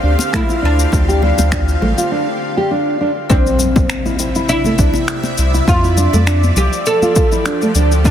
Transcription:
0.00 0.16 D2 loud
0.00 2.11 D3 medium
0.00 2.11 C4 medium
0.00 0.12 D4 medium
0.00 2.11 F4 medium
0.00 0.35 G4 loud
0.00 2.11 G4 medium
0.00 2.11 F5 medium
0.19 muted conga medium
0.19 cabasa medium
0.33 0.42 A3 loud
0.33 0.62 E4 medium
0.33 finger snap loud
0.33 kick loud
0.33 cabasa soft
0.49 0.61 F4 medium
0.49 muted conga medium
0.49 high conga soft
0.49 cabasa soft
0.62 0.86 D2 medium
0.62 0.78 D4 medium
0.62 2.08 D4 medium
0.79 cabasa medium
0.92 1.32 D2 loud
0.92 kick loud
0.92 muted conga soft
0.92 cabasa medium
1.08 1.21 G4 medium
1.08 cabasa soft
1.22 1.51 D4 medium
1.22 high conga medium
1.22 low conga medium
1.38 1.76 D2 loud
1.38 muted conga medium
1.38 low conga medium
1.38 cabasa medium
1.52 1.61 D4 medium
1.52 finger snap loud
1.52 kick medium
1.52 high conga medium
1.52 cabasa medium
1.68 cabasa soft
1.82 1.94 A1 medium
1.82 1.91 A3 medium
1.82 low conga medium
1.98 2.10 F4 medium
1.98 high conga soft
1.98 cabasa medium
2.11 2.27 D4 medium
2.57 2.69 G4 loud
2.71 2.99 D4 medium
3.01 3.10 D4 medium
3.29 5.67 C3 medium
3.29 4.52 C4 medium
3.29 3.46 D4 loud
3.29 kick loud
3.29 impact medium
3.29 high conga medium
3.29 cabasa soft
3.47 cabasa soft
3.54 6.63 E5 medium
3.59 low conga medium
3.59 cabasa medium
3.76 kick loud
3.76 muted conga medium
3.76 high conga medium
3.76 low conga medium
3.76 cabasa soft
3.90 finger snap loud
3.90 cabasa soft
4.06 4.18 E4 medium
4.06 high conga medium
4.06 cabasa soft
4.19 4.28 E4 medium
4.19 cabasa medium
4.35 4.48 E4 medium
4.35 8.11 D5 medium
4.35 cabasa soft
4.49 4.64 D4 medium
4.49 5.34 E4 loud
4.49 cabasa soft
4.64 4.73 A3 medium
4.64 high conga medium
4.64 cabasa soft
4.78 4.91 C2 loud
4.78 4.94 D4 medium
4.78 kick loud
4.78 cabasa medium
4.94 muted conga medium
4.94 high conga soft
4.94 cabasa soft
5.08 finger snap loud
5.08 cabasa soft
5.24 muted conga medium
5.24 cabasa soft
5.38 5.61 C2 medium
5.38 cabasa medium
5.54 5.66 E4 medium
5.54 cabasa soft
5.67 6.07 F2 medium
5.67 8.05 F3 medium
5.67 5.77 F4 medium
5.67 6.57 F4 medium
5.67 kick loud
5.67 high conga medium
5.67 cabasa soft
5.84 5.97 E4 medium
5.84 cabasa soft
5.97 6.13 D4 medium
5.97 low conga medium
5.97 cabasa medium
6.13 6.51 F2 loud
6.13 6.21 A3 medium
6.13 muted conga medium
6.13 high conga medium
6.13 low conga medium
6.13 cabasa soft
6.27 6.42 D4 loud
6.27 finger snap loud
6.27 cabasa soft
6.43 high conga medium
6.43 cabasa soft
6.56 6.69 C2 medium
6.56 6.86 G4 medium
6.56 low conga medium
6.56 cabasa medium
6.63 8.11 G4 medium
6.73 8.11 A4 medium
6.73 cabasa soft
6.86 7.72 A4 loud
6.86 cabasa soft
7.02 7.15 F4 medium
7.02 high conga medium
7.02 cabasa soft
7.16 7.25 F4 medium
7.16 kick loud
7.16 cabasa medium
7.32 7.45 E4 medium
7.32 cabasa soft
7.46 7.61 D4 medium
7.46 finger snap loud
7.46 cabasa soft
7.62 7.70 A3 medium
7.62 cabasa soft
7.75 8.11 D2 loud
7.75 7.91 D4 loud
7.75 cabasa medium
7.92 cabasa soft
8.04 8.11 D4 loud
8.04 kick loud
8.04 high conga medium
8.04 cabasa soft

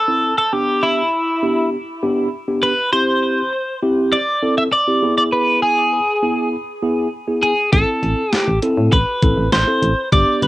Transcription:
0.00 0.37 A4 medium
0.08 0.32 C4 medium
0.08 0.32 E4 medium
0.08 0.32 A4 medium
0.38 0.53 A4 medium
0.53 1.01 B3 medium
0.53 1.01 D4 medium
0.53 1.01 G4 medium
0.53 0.84 G4 loud
0.83 1.69 E4 medium
1.43 1.75 B3 medium
1.43 1.75 D4 medium
1.43 1.75 G4 medium
2.03 2.27 B3 medium
2.03 2.27 D4 medium
2.03 2.27 G4 loud
2.48 2.72 B3 medium
2.48 2.72 D4 medium
2.48 2.72 G4 medium
2.63 2.92 B4 medium
2.93 3.41 C4 medium
2.93 3.41 E4 medium
2.93 3.41 G4 medium
2.93 3.79 C5 loud
3.83 4.15 C4 medium
3.83 4.15 E4 medium
3.83 4.15 G4 loud
4.13 4.55 D5 loud
4.43 4.67 C4 medium
4.43 4.67 E4 medium
4.43 4.67 A4 medium
4.58 4.63 E5 loud
4.73 5.15 D5 loud
4.88 5.03 C4 medium
4.88 5.02 E4 medium
4.88 5.03 G4 medium
5.03 5.99 B3 medium
5.03 5.99 E4 medium
5.03 5.99 G#4 medium
5.18 5.23 D5 medium
5.33 5.62 B4 loud
5.62 6.49 G#4 medium
6.23 6.55 B3 medium
6.23 6.55 E4 medium
6.23 6.55 G#4 medium
6.83 7.07 B3 medium
6.83 7.07 E4 medium
6.83 7.07 G#4 loud
7.28 7.52 B3 medium
7.28 7.52 E4 medium
7.28 7.52 G#4 medium
7.43 7.71 G#4 medium
7.72 7.85 A1 loud
7.72 8.21 C4 medium
7.72 8.21 E4 medium
7.72 8.34 A4 loud
7.72 8.21 A4 medium
7.72 kick loud
7.72 closed hi-hat medium
8.03 8.15 A1 medium
8.03 closed hi-hat medium
8.33 8.59 G4 loud
8.33 snare loud
8.33 closed hi-hat medium
8.48 8.60 A1 loud
8.62 8.95 C4 medium
8.62 8.95 E4 medium
8.62 8.95 A4 loud
8.62 closed hi-hat medium
8.77 8.90 A2 loud
8.92 9.04 A1 loud
8.92 9.52 B4 medium
8.92 kick medium
8.92 closed hi-hat medium
9.22 9.35 A1 medium
9.22 9.47 C4 medium
9.22 9.47 E4 medium
9.22 9.47 A4 medium
9.22 kick loud
9.22 closed hi-hat medium
9.37 9.50 A1 loud
9.52 9.64 A1 loud
9.52 10.09 C5 medium
9.52 snare loud
9.52 closed hi-hat medium
9.67 9.92 C4 medium
9.67 9.92 E4 medium
9.67 9.92 A4 medium
9.82 9.94 A1 loud
9.82 closed hi-hat medium
10.12 10.25 G1 loud
10.12 10.47 B3 medium
10.12 10.47 D4 medium
10.12 10.47 G4 medium
10.12 10.43 D5 loud
10.12 kick loud
10.12 closed hi-hat medium
10.42 10.47 G1 loud
10.42 10.47 B4 medium
10.42 closed hi-hat medium

